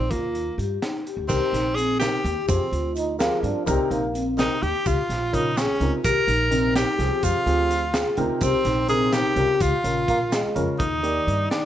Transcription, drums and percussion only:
0.11 kick medium
0.11 closed hi-hat medium
0.35 closed hi-hat soft
0.59 closed hi-hat medium
0.82 snare medium
0.82 closed hi-hat medium
1.07 closed hi-hat soft
1.29 kick loud
1.29 crash medium
1.29 shaker medium
1.54 snare soft
1.54 closed hi-hat medium
1.77 closed hi-hat medium
1.77 shaker soft
2.01 snare medium
2.01 closed hi-hat medium
2.01 shaker soft
2.25 closed hi-hat medium
2.49 kick loud
2.49 closed hi-hat medium
2.49 shaker soft
2.73 closed hi-hat medium
2.95 closed hi-hat medium
2.95 shaker soft
3.20 snare loud
3.20 closed hi-hat medium
3.20 shaker soft
3.44 closed hi-hat soft
3.67 kick loud
3.67 closed hi-hat medium
3.67 shaker medium
3.91 closed hi-hat medium
4.15 closed hi-hat medium
4.15 shaker soft
4.38 snare loud
4.38 closed hi-hat medium
4.38 shaker soft
4.63 closed hi-hat medium
4.86 kick loud
4.86 closed hi-hat medium
4.86 shaker medium
5.10 snare soft
5.10 closed hi-hat medium
5.34 kick medium
5.34 closed hi-hat medium
5.57 snare loud
5.57 closed hi-hat medium
5.57 shaker soft
5.81 closed hi-hat medium
6.04 kick loud
6.04 closed hi-hat medium
6.04 shaker medium
6.28 closed hi-hat medium
6.52 closed hi-hat medium
6.52 shaker soft
6.76 snare loud
6.76 closed hi-hat medium
6.76 shaker soft
7.00 snare soft
7.00 closed hi-hat medium
7.23 kick loud
7.23 closed hi-hat medium
7.23 shaker soft
7.47 closed hi-hat medium
7.71 closed hi-hat medium
7.71 shaker soft
7.94 snare loud
7.94 closed hi-hat medium
7.94 shaker soft
8.17 closed hi-hat soft
8.41 kick medium
8.41 closed hi-hat medium
8.41 shaker medium
8.65 snare soft
8.65 closed hi-hat medium
8.88 closed hi-hat medium
8.88 shaker soft
9.13 snare loud
9.13 closed hi-hat medium
9.13 shaker soft
9.36 closed hi-hat medium
9.60 kick loud
9.60 closed hi-hat medium
9.60 shaker medium
9.85 closed hi-hat medium
10.08 kick medium
10.08 closed hi-hat medium
10.32 snare loud
10.32 closed hi-hat medium
10.32 shaker soft
10.56 closed hi-hat medium
10.80 kick loud
10.80 closed hi-hat medium
11.04 closed hi-hat medium
11.28 closed hi-hat medium
11.51 snare medium
11.51 closed hi-hat medium

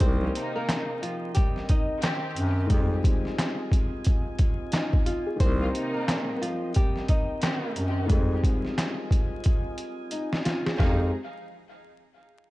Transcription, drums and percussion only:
0.00 kick loud
0.00 closed hi-hat medium
0.35 closed hi-hat medium
0.69 snare loud
0.69 clap medium
0.69 closed hi-hat loud
1.03 closed hi-hat medium
1.35 kick medium
1.35 closed hi-hat medium
1.56 snare soft
1.69 kick medium
1.69 closed hi-hat medium
2.02 snare loud
2.02 clap loud
2.02 closed hi-hat medium
2.36 closed hi-hat medium
2.70 kick loud
2.70 closed hi-hat medium
3.04 kick loud
3.04 closed hi-hat medium
3.25 snare soft
3.38 snare loud
3.38 clap loud
3.38 closed hi-hat loud
3.72 kick medium
3.72 closed hi-hat medium
4.04 kick medium
4.04 closed hi-hat medium
4.39 kick medium
4.39 closed hi-hat medium
4.72 snare loud
4.72 clap medium
4.72 closed hi-hat medium
4.93 kick medium
5.06 closed hi-hat medium
5.40 kick loud
5.40 closed hi-hat medium
5.75 closed hi-hat medium
6.08 snare loud
6.08 clap loud
6.08 closed hi-hat loud
6.43 closed hi-hat medium
6.74 kick loud
6.74 closed hi-hat medium
6.96 snare soft
7.08 kick medium
7.08 closed hi-hat medium
7.42 snare loud
7.42 clap loud
7.42 closed hi-hat medium
7.76 closed hi-hat medium
8.10 kick loud
8.10 closed hi-hat medium
8.44 kick loud
8.44 closed hi-hat medium
8.65 snare soft
8.78 snare loud
8.78 clap medium
8.78 closed hi-hat medium
9.11 kick medium
9.11 closed hi-hat medium
9.44 kick medium
9.44 closed hi-hat medium
9.78 closed hi-hat medium
10.11 closed hi-hat medium
10.33 snare medium
10.45 snare loud
10.45 closed hi-hat medium
10.66 snare medium
10.79 kick loud
10.79 snare medium

